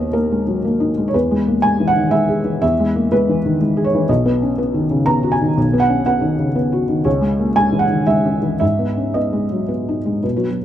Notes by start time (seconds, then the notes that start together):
Already playing: D#2 A#3 B3 D#5
0.13 A#3 A#4
0.32 G#3
0.47 F#3
0.65 A#3
0.80 D#4
0.97 G#3
1.08 C#5
1.14 E2 B4
1.31 G#3
1.48 A#3
1.62 G#3 G#5
1.80 E3
1.88 F#5
1.96 D#3
2.11 G#3 E5
2.29 G#4
2.44 E3
2.62 E2 E5
2.80 G#3
2.96 A#3
3.12 G#3 B4
3.29 E3
3.46 D#3
3.61 G#3
3.77 G#4
3.84 C#5
3.95 E3
4.09 B1 D#5
4.26 B3
4.42 C#4
4.58 B3
4.74 D#3
4.91 C#3
5.06 B3 A#5
5.23 F#4
5.32 G#5
5.41 D#3
5.57 B1
5.73 B3
5.80 F#5
5.89 C#4
6.06 B3 F#5
6.21 D#3
6.39 C#3
6.56 B3
6.72 F#4
6.89 D#3
7.04 C#2 C#5
7.21 G#3
7.39 A#3
7.56 G#3 G#5
7.72 E3
7.79 F#5
7.89 D#3
8.07 G#3 E5
8.25 C#4
8.42 E3
8.60 G#2 E5
8.79 B3
8.97 C#4
9.14 B3 D#5
9.33 G#3
9.52 F#3
9.68 B3
9.89 D#4
10.06 G#3
10.23 B2 B4
10.36 F#3 B3 F#4
10.49 F#3